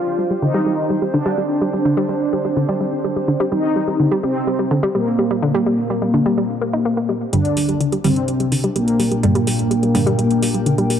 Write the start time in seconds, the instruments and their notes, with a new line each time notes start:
Already playing: ambient pad C4 G4 C5 G5, analog polysynth F4
0.19 synth arpeggio sound G3
0.31 synth arpeggio sound G3
0.42 synth arpeggio sound D3, analog polysynth D#4
0.54 synth arpeggio sound G3
0.66 synth arpeggio sound G3
0.90 synth arpeggio sound G3
1.02 synth arpeggio sound G3
1.14 synth arpeggio sound D3, analog polysynth D4
1.26 synth arpeggio sound G3
1.38 synth arpeggio sound G3
1.61 synth arpeggio sound G3
1.73 synth arpeggio sound G3
1.85 synth arpeggio sound D3
1.97 synth arpeggio sound G3
2.09 synth arpeggio sound G3
2.33 synth arpeggio sound G3
2.45 synth arpeggio sound G3
2.57 synth arpeggio sound D3
2.69 synth arpeggio sound G3
2.81 synth arpeggio sound G3
3.04 synth arpeggio sound G3
3.16 synth arpeggio sound G3
3.28 synth arpeggio sound D3
3.40 synth arpeggio sound G3
3.52 synth arpeggio sound G3, analog polysynth D#4
3.76 synth arpeggio sound G3
3.88 synth arpeggio sound G3
4.00 synth arpeggio sound D3
4.12 synth arpeggio sound G3
4.23 synth arpeggio sound G3, analog polysynth C4
4.47 synth arpeggio sound G3
4.59 synth arpeggio sound G3
4.71 synth arpeggio sound D3
4.83 synth arpeggio sound G3
4.95 synth arpeggio sound G3, analog polysynth A#3
5.19 synth arpeggio sound G3
5.31 synth arpeggio sound G3
5.43 synth arpeggio sound D3
5.55 synth arpeggio sound G3
5.66 synth arpeggio sound G3
5.90 synth arpeggio sound G3
6.02 synth arpeggio sound G3
6.14 synth arpeggio sound D3
6.26 synth arpeggio sound G3
6.38 synth arpeggio sound G3
6.62 synth arpeggio sound A#3
6.73 synth arpeggio sound D#4
6.85 synth arpeggio sound A#3
6.97 synth arpeggio sound A#3
7.09 synth arpeggio sound G3
7.33 synth stab G2 D3 G3, analog polysynth D3 D4, synth arpeggio sound G3, ambient pad D4, closed hi-hat
7.45 closed hi-hat
7.57 synth arpeggio sound G3, open hi-hat
7.69 synth arpeggio sound G3, closed hi-hat
7.75 ambient pad G4 A#4
7.80 synth arpeggio sound D3, closed hi-hat
7.89 synth arpeggio sound G3, ambient pad G5, closed hi-hat
8.04 synth stab G2 D3 G3, analog polysynth C3 C4, synth arpeggio sound G3, open hi-hat
8.16 closed hi-hat
8.28 synth arpeggio sound G3, closed hi-hat
8.40 synth arpeggio sound G3, closed hi-hat
8.52 synth arpeggio sound D3, open hi-hat
8.64 synth arpeggio sound G3, closed hi-hat
8.76 analog polysynth A#2 A#3, synth arpeggio sound G3, closed hi-hat
8.88 closed hi-hat
9.00 synth arpeggio sound G3, open hi-hat
9.11 synth arpeggio sound G3, closed hi-hat
9.23 synth stab G2 D3 G3, synth arpeggio sound D3, closed hi-hat
9.35 synth arpeggio sound G3, closed hi-hat
9.47 synth arpeggio sound G3, open hi-hat
9.59 closed hi-hat
9.71 synth arpeggio sound G3, closed hi-hat
9.83 synth arpeggio sound G3, closed hi-hat
9.95 synth stab G2 D3 G3, synth arpeggio sound D3, open hi-hat
10.06 synth arpeggio sound G3, closed hi-hat
10.19 synth arpeggio sound G3, closed hi-hat
10.31 closed hi-hat
10.42 synth arpeggio sound G3, open hi-hat
10.54 synth arpeggio sound G3, closed hi-hat
10.66 synth arpeggio sound D3, closed hi-hat
10.78 synth arpeggio sound G3, closed hi-hat
10.90 synth arpeggio sound G3, open hi-hat